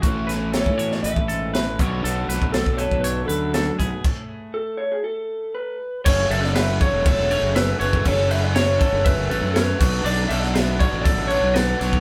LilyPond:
<<
  \new Staff \with { instrumentName = "Clean electric guitar" } { \time 4/4 \key fis \minor \tempo 4 = 120 r4 cis''8. d''16 e''4. r8 | r4 a'8 cis''8 b'8 a'4 r8 | r4 a'8 cis''16 gis'16 a'4 b'4 | cis''8 e''16 d''16 e''8 cis''8 cis''4 b'8 b'8 |
cis''8 e''16 d''16 cis''8 cis''8 b'8 b'8 b'4 | d''8 e''16 d''16 e''8 d''8 d''8 cis''8 b'4 | }
  \new Staff \with { instrumentName = "Clean electric guitar" } { \time 4/4 \key fis \minor fis'8 b'8 a'8 cis''8 b'8 a'8 b'8 cis''8 | a'8 b'8 a'8 b'8 cis''8 b'8 a'8 gis'8 | r1 | cis''8 a'8 b'8 cis''8 a'8 cis''8 e''8 cis''8 |
a'8 b'8 cis''8 a'8 e''8 a'8 cis''8 fis'8 | d''8 a'8 b'8 cis''8 a'8 cis''8 d''8 cis''8 | }
  \new Staff \with { instrumentName = "Clean electric guitar" } { \time 4/4 \key fis \minor << { r8 b'8 cis'8 fis'8 b'4. r8 | a'8 a8 d'8 a'8 d'8 a8 d'8 r8 | r1 | r1 |
r1 | r1 | } \\ { a,4. e4 gis,8 a,8 b,8~ | b,4 fis4. fis,4 b,8 | r1 | r1 |
r1 | r1 | } >> }
  \new Staff \with { instrumentName = "Overdriven electric guitar" } { \time 4/4 \key fis \minor <a, e a cis' e'>2.~ <a, e a cis' e'>8 <b, fis b d' fis'>8~ | <b, fis b d' fis'>2.~ <b, fis b d' fis'>8 r8 | r1 | <fis, cis fis a cis'>8 <fis a cis'>8 <fis, cis fis a cis'>8 <fis a cis'>4 <fis a cis'>4 <fis a cis'>8 |
<fis, cis fis a cis'>8 <fis a cis'>8 <fis, cis fis a cis'>8 <fis a cis'>4 <fis a cis'>4 <b, fis b d'>8 | <b, fis b d'>8 <fis b d'>8 <b, fis b d'>8 <fis b d'>4 <fis b d'>4 <fis b d'>8 | }
  \new Staff \with { instrumentName = "Fingered electric bass" } { \clef bass \time 4/4 \key fis \minor a,,4~ a,,16 a,8. a,,16 a,,4~ a,,16 b,,8 | b,,8 b,,16 b,,8 b,,8 b,,8. d,4 b,,16 r16 | r1 | fis,,8 fis,,4~ fis,,16 e,,8 e,,8 fis,,8. fis,,8 |
fis,,4.~ fis,,16 fis,,8 fis,,16 a,,16 fis,8. b,,8 | b,,8 b,,4~ b,,16 a,,8 a,,8 b,,8. b,,8 | }
  \new DrumStaff \with { instrumentName = "Drums" } \drummode { \time 4/4 <hh bd>8 <hh sn>8 <hh sn>16 bd16 hh16 sn16 hh16 bd16 hh8 <hh sn>8 <hh bd>8 | hh8 <hh sn>16 bd16 <hh sn>16 bd16 hh16 bd16 hh8 hh8 <hh sn>8 <hh bd>8 | <cymc bd>4 r4 r4 r4 | <cymc bd>8 cymc16 sn16 <cymc sn>8 <cymc bd>8 <cymc bd>8 cymc8 <cymc sn>8 cymc16 bd16 |
<cymc bd>8 cymc8 <cymc sn>8 <cymc bd>8 <cymc bd>8 cymc8 <cymc sn>8 <cymc bd sn>8 | cymc8 cymc16 sn16 <cymc sn>8 <cymc bd>8 <cymc bd>8 cymc8 <cymc sn>8 <cymc sn>16 bd16 | }
>>